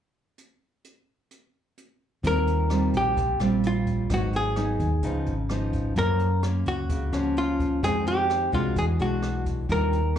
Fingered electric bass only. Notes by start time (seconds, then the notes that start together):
2.24 D#2
2.94 A#1
3.17 A#1
3.40 A#1
4.10 G#1
4.80 D#2
5.26 G#1
5.96 F#2
6.66 C#2
6.89 C#2
7.12 C#2
7.83 F2
8.53 C2
8.76 E2
9.00 B1
9.69 D#2